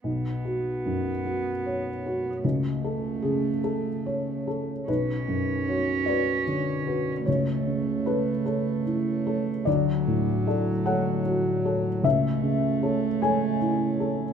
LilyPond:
<<
  \new Staff \with { instrumentName = "Felt piano" } { \time 6/8 \key b \dorian \tempo 4. = 50 << { r2. | r4 gis'8 a'4. | b'4. d''4. | cis''4 b'8 r4. |
d''4. fis''4. | e''4. gis''8 r4 | } \\ { b,,8 fis'8 fis,8 fis'8 cis''8 fis'8 | cis,8 a'8 cis4 cis''8 a'8 | b,,8 fis,8 <fis' cis''>8 <fis' b'>8 d8 <fis' b'>8 | cis,8 cis8 <a' cis''>8 <a' cis''>8 e'8 <a' cis''>8 |
d,8 a,8 <a' d''>8 <a' cis''>8 fis'8 <a' cis''>8 | cis,8 cis8 <a' cis''>8 <a' cis''>8 e'8 <a' cis''>8 | } >> }
  \new Staff \with { instrumentName = "Cello" } { \time 6/8 \key b \dorian b2. | a2~ a8. r16 | cis'2. | a2. |
fis2. | a2. | }
>>